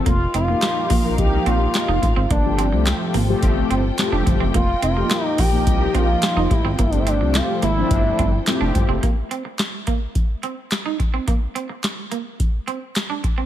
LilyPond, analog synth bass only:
\new Staff \with { instrumentName = "Analog synth bass" } { \clef bass \time 4/4 \key bes \mixolydian \tempo 4 = 107 f,,8 f,,8 r8 bes,,8 c,8 bes,,8 r16 f,,16 a,,16 aes,,16 | g,,8. c,8 r16 aes,,8 g,,8 g,,8 r16 f,,16 g,,16 ges,,16 | f,,8 f,,8 r8 bes,,8 c,8 bes,,8 r16 f,,16 a,,16 aes,,16 | g,,8. c,8 r16 aes,,8 g,,8 g,,8 r16 f,,16 g,,16 ges,,16 |
r1 | r1 | }